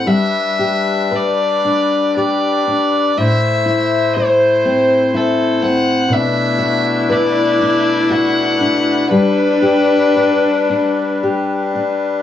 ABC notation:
X:1
M:3/4
L:1/8
Q:1/4=59
K:G
V:1 name="Fiddle"
e2 d2 d2 | e2 c2 A f | e2 d2 f2 | B4 z2 |]
V:2 name="Steel-string acoustic guitar"
G, G B D G D | A,, E c C E C | B,, F B D F D | G, G B D G D |]
V:3 name="Viola"
z6 | z6 | E6 | D4- D z |]
V:4 name="Accordion"
[DB]6 | [Ec]6 | [DB]6- | [DB]6 |]
V:5 name="Accordion" clef=bass
G,6 | A,6- | A,6 | G,6 |]